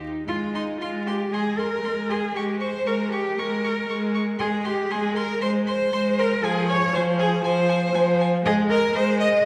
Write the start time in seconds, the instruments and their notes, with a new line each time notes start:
0.01 viola D#4
0.27 viola G#3, cello F4, violin F4 C6
0.54 cello D#4, violin D#4 C6
0.81 viola G#3, violin F4 C6, cello F4
1.07 violin G4 C6, cello G4
1.31 viola G#3, cello G#4, violin G#4 C6
1.58 cello A#4, violin A#4 C6
1.83 viola G#3, violin C6
2.09 cello G#4, violin G#4 C6
2.35 viola G#3, cello G4, violin G4 C#6
2.60 cello C5, violin C5 C#6
2.86 viola G#3, violin A#4 C#6, cello A#4
3.12 cello G4, violin G4 C#6
3.38 viola G#3, violin A#4 C#6, cello A#4
3.64 violin C#6
3.88 viola G#3, violin C#6
4.15 violin C#6
4.39 viola G#3, cello G#4, violin G#4 C6
4.65 cello G4, violin G4 C6
4.91 viola G#3, violin G#4 C6, cello G#4
5.16 cello A#4, violin A#4 C6
5.41 viola G#3, cello C5, violin C5 C6
5.67 cello C5, violin C5 C6
5.93 viola G#3, violin C6
6.18 violin A#4 C6, cello A#4
6.43 viola F3, violin G#4 G#5, cello G#4
6.69 cello C#5, violin C#5 G#5
6.94 viola F3, violin C5 G#5, cello C5
7.19 violin G#4 G#5, cello G#4
7.44 viola F3, violin C5 G#5, cello C5
7.69 violin G#5
7.94 viola F3, violin G#5
8.21 violin G#5
8.45 viola G#3, violin G#4 D#5, cello G#4
8.70 violin A#4 D#5, cello A#4
8.95 viola G#3, violin C5 D#5, cello C5
9.20 violin D#5, cello D#5